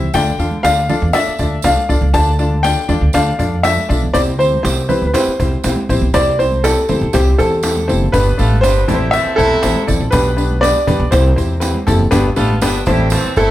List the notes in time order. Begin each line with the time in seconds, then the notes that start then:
Already playing: E5
0.02 low conga
0.14 D2 D3 D4 F4 A4 D5 G5, cajon bass, cajon slap, tambourine, muted conga
0.38 E2 D4 F4 A4 F5, cajon slap, tambourine
0.51 high conga
0.63 D2 D4 F4 A4 D5 F5, cajon slap, tambourine, muted conga
0.77 muted conga
0.89 D4 F4 A4 D5, cajon slap, tambourine, high conga, low conga
1.02 E2
1.13 D4 F4 A4 D5 E5, cajon bass, cajon slap, tambourine
1.27 muted upright bass stroke, muted conga
1.38 D2 D4 F4 A4 D5, cajon bass, tambourine, high conga
1.52 cajon slap
1.62 C2 D4 F4 A4 D5 F5, cajon slap, tambourine, muted conga
1.76 high conga
1.89 C2 D4 F4 A4 D5, cajon slap, tambourine
2.01 C#2, low conga
2.14 D2 D3 D4 F4 A4 D5 A5, cajon bass, cajon slap, tambourine
2.39 D4 F4 A4 D5, cajon slap, tambourine
2.51 high conga
2.63 D4 F4 A4 D5 G5, cajon slap, tambourine, muted conga
2.88 E2 D4 F4 A4 D5, cajon slap, tambourine, high conga, low conga
3.01 D2
3.13 D2 D4 F4 A4 D5 F5, cajon bass, cajon slap, tambourine, muted conga
3.39 F2 D4 F4 A4 D5, cajon bass, tambourine, high conga
3.52 cajon slap
3.63 D4 F4 A4 D5 E5, cajon slap, tambourine, muted conga
3.77 high conga
3.89 B1 D4 F4 A4 D5, cajon slap, tambourine
4.03 low conga
4.14 C2 C3 C4 E4 G4 C5 D5, cajon bass, cajon slap, tambourine
4.27 muted conga
4.38 D2 C4 E4 G4 C5, cajon slap, tambourine
4.52 high conga
4.63 C2 C4 E4 G4 C5, cajon slap, tambourine
4.77 muted conga
4.89 C4 E4 G4 B4 C5, cajon slap, tambourine, high conga, low conga
5.02 D2
5.07 B4
5.13 C4 E4 G4 B4 C5, cajon bass, cajon slap, tambourine, muted conga
5.27 muted upright bass stroke, muted conga
5.39 C2 C4 E4 G4 C5, cajon bass, tambourine, high conga
5.52 cajon slap
5.64 B1 C4 E4 G4 C5, cajon slap, tambourine, muted conga
5.76 muted conga, high conga
5.89 A#1 C4 E4 G4 C5, cajon slap, tambourine
6.01 B1, low conga
6.14 C2 C3 C4 E4 G4 C5 D5, cajon bass, cajon slap, tambourine
6.26 muted conga
6.39 C4 E4 G4 C5, cajon slap, tambourine
6.52 high conga
6.64 C4 E4 G4 A4 D5, cajon slap, tambourine
6.77 muted conga
6.89 D2 C4 E4 G4 C5, cajon slap, tambourine, high conga, low conga
7.01 C2, cajon slap
7.13 C2 C4 E4 G4 C5, cajon bass, cajon slap, tambourine
7.27 muted conga
7.38 E2 C4 E4 G4 A4 C5, cajon bass, tambourine, high conga
7.51 cajon slap
7.63 C4 E4 G4 A4, cajon slap, tambourine, muted conga
7.77 high conga
7.88 F#1 C4 E4 G4 C5, cajon slap, tambourine
8.02 low conga
8.12 G1 G2 B3 D4 G4 B4, cajon bass, cajon slap, tambourine
8.27 muted conga
8.37 A1 A3 B3 D4 F4 G4 A4 B4, cajon slap, tambourine
8.51 high conga
8.61 G1 B3 D4 G4 B4 C5, cajon slap, tambourine, muted conga
8.65 G3 D4
8.88 A1 A2 G3 C4 E4 G4 A4 B4, cajon bass, tambourine, high conga, low conga
8.94 C5
9.11 E3 C4 A4 E5, cajon slap, tambourine
9.25 muted upright bass stroke, cajon slap
9.36 B1 C3 A3 C4 E4 A4 C5, cajon bass, tambourine, high conga
9.63 A1 C4 E4 A4 C5, cajon slap, tambourine
9.76 muted conga, high conga
9.87 A1 C4 E4 A4 D5, cajon bass, tambourine, low conga
10.00 A#1, low conga
10.11 B1 B2 B3 D4 G4 B4, cajon bass, cajon slap, tambourine
10.25 muted conga
10.37 B3 D4 G4 B4, cajon slap, tambourine
10.50 high conga
10.61 B3 D4 G4 B4 D5, cajon slap, tambourine
10.76 muted conga
10.87 C2 B3 D4 G4 B4, cajon bass, tambourine, high conga, low conga
11.00 B1
11.11 C2 C3 C4 E4 G4 C5, cajon bass, cajon slap, tambourine
11.25 cajon slap
11.36 E2 C4 E4 G4 C5, cajon bass, tambourine, high conga
11.60 C4 E4 G4 B4, cajon slap, tambourine, muted conga
11.74 muted conga, high conga
11.87 F#1 C4 E4 G4 A4, cajon bass, tambourine, low conga
11.99 low conga
12.11 G1 G2 B3 D4 G4 B4, cajon bass, cajon slap, tambourine
12.36 A1 A3 B3 D4 F4 G4 A4 B4, cajon slap, tambourine
12.50 high conga
12.61 G1 G3 B3 D4 G4 B4, cajon slap, tambourine, muted conga
12.86 A1 A2 G3 C4 E4 G4 A4 C5, cajon bass, tambourine, high conga, low conga
13.10 E3 C4 A4, cajon slap, tambourine, muted conga
13.24 muted upright bass stroke, cajon slap, muted conga
13.36 G1 C3 A3 C4 E4 A4 C5, cajon bass, tambourine, high conga